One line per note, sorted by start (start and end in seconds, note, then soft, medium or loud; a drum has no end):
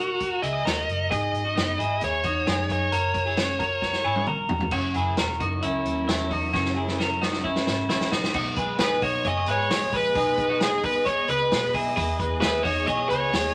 0.00 0.39 B1 medium
0.00 0.41 F#4 medium
0.00 0.47 F#4 medium
0.00 0.40 A#4 medium
0.20 kick medium
0.20 closed hi-hat medium
0.42 0.62 C#2 medium
0.42 0.65 E4 medium
0.42 0.66 G#4 medium
0.42 1.10 D#5 medium
0.42 closed hi-hat medium
0.65 0.85 D#2 medium
0.65 1.09 F#4 medium
0.65 1.08 A#4 medium
0.65 snare loud
0.65 closed hi-hat medium
0.88 1.08 F#1 medium
0.88 closed hi-hat medium
1.11 1.31 G#1 loud
1.11 1.43 D#4 medium
1.11 1.43 G#4 loud
1.11 2.04 D#5 medium
1.11 kick loud
1.11 closed hi-hat loud
1.33 1.53 G#1 medium
1.33 closed hi-hat medium
1.45 1.54 D#4 medium
1.45 1.56 F#4 medium
1.56 1.76 F#1 loud
1.56 1.78 B3 medium
1.56 1.79 D#4 medium
1.56 snare loud
1.56 closed hi-hat medium
1.78 1.98 G#1 medium
1.78 2.22 E4 medium
1.78 2.21 G#4 medium
1.78 closed hi-hat medium
2.01 2.21 D#2 medium
2.01 2.71 C#5 medium
2.01 kick medium
2.01 closed hi-hat medium
2.23 2.43 E2 medium
2.23 2.46 D#4 medium
2.23 2.46 F#4 medium
2.23 kick loud
2.23 closed hi-hat medium
2.47 2.66 F#2 loud
2.47 2.90 D#4 medium
2.47 2.89 G#4 medium
2.47 snare loud
2.47 closed hi-hat medium
2.69 2.89 F#2 medium
2.69 4.25 C#5 medium
2.69 kick medium
2.69 closed hi-hat medium
2.92 4.01 F#1 loud
2.92 3.25 F#4 medium
2.92 3.24 A#4 medium
2.92 closed hi-hat loud
3.14 kick medium
3.14 closed hi-hat medium
3.26 3.38 E4 medium
3.26 3.37 G#4 medium
3.37 3.60 C#4 medium
3.37 3.59 F#4 medium
3.37 snare loud
3.37 closed hi-hat medium
3.59 4.03 F#4 medium
3.59 4.02 A#4 medium
3.59 kick medium
3.59 closed hi-hat medium
3.82 kick medium
3.82 snare soft
3.93 snare medium
4.04 4.24 G#1 medium
4.04 4.27 E4 medium
4.04 4.27 G#4 medium
4.16 high tom medium
4.27 4.47 A#1 loud
4.27 4.71 F#4 medium
4.27 4.70 A#4 medium
4.27 mid tom medium
4.49 4.69 E1 medium
4.49 floor tom loud
4.61 floor tom loud
4.71 4.92 F#1 medium
4.71 8.32 F#3 medium
4.71 4.96 C#4 medium
4.71 8.32 C#4 medium
4.71 8.31 E4 medium
4.71 4.95 F#4 loud
4.71 8.32 A#4 medium
4.71 kick loud
4.71 crash loud
4.94 5.15 F#1 loud
4.94 5.17 E4 medium
4.94 5.18 G#4 medium
4.94 closed hi-hat medium
5.17 5.37 E1 loud
5.17 5.39 F#4 medium
5.17 5.41 A#4 medium
5.17 snare loud
5.17 closed hi-hat medium
5.40 5.60 F#1 loud
5.40 5.63 D#4 medium
5.40 5.63 F#4 medium
5.40 kick loud
5.40 closed hi-hat medium
5.62 5.83 C#2 medium
5.62 6.06 C#4 medium
5.62 6.06 E4 medium
5.62 closed hi-hat medium
5.85 6.05 D#2 medium
5.85 closed hi-hat medium
6.08 6.28 E2 loud
6.08 6.31 C#4 medium
6.08 6.31 E4 medium
6.08 snare loud
6.08 closed hi-hat medium
6.31 6.50 E2 medium
6.31 6.54 D#4 medium
6.31 6.52 F#4 medium
6.31 kick medium
6.31 open hi-hat medium
6.53 7.63 F#1 loud
6.53 6.77 C#4 medium
6.53 6.76 F#4 loud
6.53 kick loud
6.53 snare medium
6.65 snare medium
6.76 6.99 E4 medium
6.76 6.99 G#4 medium
6.88 snare medium
6.99 7.20 F#4 medium
6.99 7.22 A#4 medium
6.99 snare medium
7.21 7.44 D#4 soft
7.21 7.44 F#4 medium
7.21 snare medium
7.33 snare medium
7.44 7.87 C#4 medium
7.44 7.87 E4 medium
7.44 kick medium
7.56 snare medium
7.67 7.86 G#1 medium
7.67 snare medium
7.89 8.09 A#1 medium
7.89 8.12 C#4 medium
7.89 8.12 E4 medium
7.89 snare loud
8.01 snare medium
8.12 8.31 A#1 medium
8.12 8.34 D#4 medium
8.12 8.33 F#4 medium
8.12 snare medium
8.24 snare loud
8.34 8.54 B1 loud
8.34 11.93 G#3 medium
8.34 13.54 B3 medium
8.34 8.58 D#4 medium
8.34 8.57 F#4 loud
8.34 13.54 D#5 medium
8.34 kick loud
8.34 crash loud
8.56 8.76 B1 loud
8.56 8.79 G#4 medium
8.56 8.80 B4 medium
8.56 kick medium
8.56 hi-hat pedal medium
8.56 open hi-hat medium
8.78 9.00 A#1 medium
8.78 9.02 D#4 medium
8.78 9.02 G#4 medium
8.78 9.01 B4 loud
8.78 snare loud
8.78 hi-hat pedal medium
8.78 open hi-hat medium
9.02 9.22 B1 medium
9.02 9.26 D#4 medium
9.02 9.25 F#4 medium
9.02 9.24 C#5 loud
9.02 kick loud
9.02 hi-hat pedal medium
9.02 open hi-hat medium
9.24 9.44 F#1 medium
9.24 9.47 G#4 medium
9.24 9.48 C#5 loud
9.24 9.48 D#5 loud
9.24 kick medium
9.24 hi-hat pedal medium
9.24 open hi-hat medium
9.46 9.67 G#1 medium
9.46 9.70 G#4 medium
9.46 9.70 B4 medium
9.46 hi-hat pedal medium
9.46 open hi-hat medium
9.51 9.96 C#5 loud
9.70 9.89 A#1 medium
9.70 9.93 G#4 medium
9.70 9.93 C#5 medium
9.70 snare loud
9.70 hi-hat pedal medium
9.70 open hi-hat loud
9.92 10.12 A#1 medium
9.92 10.15 G#4 medium
9.92 10.16 B4 medium
9.92 10.59 B4 loud
9.92 kick medium
9.92 hi-hat pedal medium
9.92 open hi-hat medium
10.15 11.25 B1 loud
10.15 10.48 D#4 medium
10.15 10.48 G#4 loud
10.15 kick loud
10.15 hi-hat pedal medium
10.15 open hi-hat loud
10.37 kick medium
10.37 hi-hat pedal medium
10.37 open hi-hat medium
10.49 10.60 D#4 medium
10.49 10.60 F#4 medium
10.60 11.04 D#4 medium
10.60 11.03 G#4 medium
10.60 10.83 G#4 medium
10.60 snare loud
10.60 hi-hat pedal medium
10.60 open hi-hat medium
10.83 11.08 B4 medium
10.83 kick medium
10.83 hi-hat pedal medium
10.83 open hi-hat medium
11.05 11.28 G#4 medium
11.05 11.28 C#5 medium
11.05 11.27 C#5 loud
11.05 kick medium
11.05 hi-hat pedal medium
11.05 open hi-hat loud
11.28 11.48 C#2 medium
11.28 11.72 G#4 medium
11.28 11.71 B4 medium
11.28 11.72 B4 medium
11.28 hi-hat pedal medium
11.28 open hi-hat medium
11.51 11.71 B2 loud
11.51 snare loud
11.51 hi-hat pedal medium
11.51 open hi-hat medium
11.74 11.93 B1 medium
11.74 11.96 E4 medium
11.74 11.95 G#4 medium
11.74 kick medium
11.74 hi-hat pedal medium
11.74 open hi-hat medium
11.96 12.16 E2 loud
11.96 13.54 E3 medium
11.96 12.19 E4 medium
11.96 12.19 G#4 loud
11.96 13.54 G#4 medium
11.96 kick loud
11.96 hi-hat pedal medium
11.96 open hi-hat loud
12.19 12.39 E2 loud
12.19 12.41 G#4 medium
12.19 12.42 B4 medium
12.19 kick medium
12.19 hi-hat pedal medium
12.19 open hi-hat medium
12.41 12.62 D#2 loud
12.41 12.65 E4 medium
12.41 12.64 G#4 medium
12.41 12.63 B4 loud
12.41 snare loud
12.41 hi-hat pedal medium
12.41 open hi-hat medium
12.63 12.84 E2 loud
12.63 12.87 D#4 medium
12.63 12.87 F#4 medium
12.63 12.85 C#5 loud
12.63 kick loud
12.63 hi-hat pedal medium
12.63 open hi-hat medium
12.87 13.07 B1 loud
12.87 13.10 G#4 medium
12.87 13.10 C#5 loud
12.87 13.09 D#5 loud
12.87 kick medium
12.87 hi-hat pedal medium
12.87 open hi-hat loud
13.09 13.30 C#2 medium
13.09 13.32 G#4 medium
13.09 13.33 B4 medium
13.09 13.54 C#5 loud
13.09 hi-hat pedal medium
13.09 open hi-hat medium
13.33 13.52 D#2 loud
13.33 13.54 G#4 medium
13.33 13.54 C#5 medium
13.33 snare loud
13.33 hi-hat pedal medium
13.33 open hi-hat medium